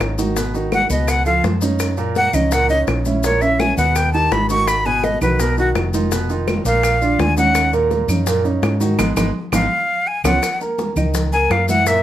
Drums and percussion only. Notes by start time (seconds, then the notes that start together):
0.00 high bongo, low bongo, high conga, claves, maracas
0.18 high conga, maracas
0.37 high bongo, maracas
0.54 high bongo, high conga, maracas
0.72 high bongo, high conga, claves, maracas
0.90 high bongo, high conga, maracas
1.08 high bongo, claves, maracas
1.26 high conga, maracas
1.44 high bongo, low bongo, high conga, maracas
1.62 high bongo, high conga, maracas
1.79 high bongo, claves, maracas
1.97 high conga, maracas
2.15 high bongo, high conga, maracas
2.33 high conga, low conga, claves, maracas
2.51 high bongo, high conga, maracas
2.69 high conga, maracas
2.87 high bongo, low bongo, claves, maracas
3.05 high conga, maracas
3.23 high bongo, high conga, maracas
3.42 high bongo, high conga, maracas
3.60 high bongo, high conga, claves, maracas
3.78 high bongo, high conga, maracas
3.95 high bongo, high conga, claves, maracas
4.14 high conga, maracas
4.31 high bongo, low bongo, high conga, maracas
4.50 high bongo, high conga, maracas
4.68 high bongo, claves, maracas
4.86 high conga, maracas
5.03 high bongo, high conga, maracas
5.21 high conga, low conga, claves, maracas
5.39 high bongo, high conga, maracas
5.58 high conga, maracas
5.75 high bongo, low bongo, high conga, claves, maracas
5.94 high conga, maracas
6.12 high bongo, high conga, maracas
6.30 high bongo, high conga, maracas
6.48 high bongo, high conga, claves, maracas
6.65 high bongo, high conga, maracas
6.83 high bongo, high conga, claves, maracas
7.01 high conga, maracas
7.19 high bongo, low bongo, high conga, maracas
7.37 high bongo, high conga, maracas
7.55 high bongo, high conga, claves, maracas
7.73 high conga, maracas
7.91 high bongo, high conga, maracas
8.09 high conga, low conga, claves, maracas
8.27 high bongo, high conga, maracas
8.45 high conga, maracas
8.63 high bongo, low bongo, claves, maracas
8.81 high conga, maracas
8.99 high bongo, low conga, claves, maracas
9.17 high bongo, low conga, claves, maracas
9.52 high bongo, low conga, claves, maracas
10.24 high bongo, low conga, claves, maracas
10.43 high bongo, high conga, claves, maracas
10.61 high conga, maracas
10.78 high bongo, high conga, maracas
10.96 high conga, low conga, claves, maracas
11.14 high bongo, high conga, low conga, maracas
11.33 high conga, maracas
11.51 high bongo, low bongo, high conga, claves, maracas
11.69 high conga, maracas
11.86 high bongo, high conga, maracas